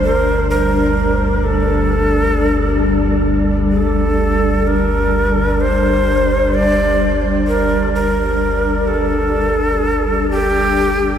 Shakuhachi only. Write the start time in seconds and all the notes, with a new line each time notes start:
0.04 A#4
0.50 A#4
1.44 A4
3.71 A4
4.67 A#4
5.61 C5
6.54 D5
7.48 A#4
7.95 A#4
8.87 A4
10.31 G4